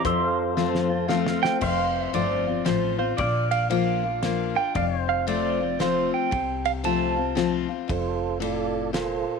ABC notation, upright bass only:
X:1
M:3/4
L:1/8
Q:"Swing" 1/4=115
K:F
V:1 name="Upright bass" clef=bass
F,,6 | F,,,2 G,,,2 A,,,2 | B,,,6 | F,,,6 |
C,,6 | F,,,6 |]